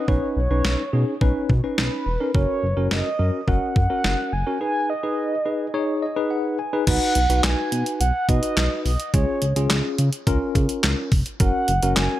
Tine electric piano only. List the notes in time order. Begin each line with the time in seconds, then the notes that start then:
0.08 C#4 D#4 B4
0.51 C#4 D#4 B4
0.93 C#4 D#4 G#4
1.21 C#4 D#4 B4
1.64 C#4 D#4 B4
2.20 C#4 D#4 A#4
2.35 C#4 F#4 A#4
2.77 C#4 F#4 A#4
3.19 C#4 F#4 A#4
3.48 C#4 F#4 A#4
3.90 C#4 F#4 A#4
4.47 C#4 F#4 A#4
4.61 D#4 G#4 B4
5.03 D#4 G#4 B4
5.46 D#4 G#4 B4
5.74 D#4 G#4 C#5
6.02 D#5
6.16 D#4 G#4 B4
6.31 F#5
6.59 G#5
6.73 D#4 G#4 B4
6.87 D#4 F#4 B4
7.30 D#4 F#4 B4
8.29 D#4 F#4 B4
9.14 C#4 F4 G#4
9.56 C#4 F4 G#4
10.27 C#4 F4 A#4
11.40 C#4 F#4 A#4
11.83 C#4 F#4 A#4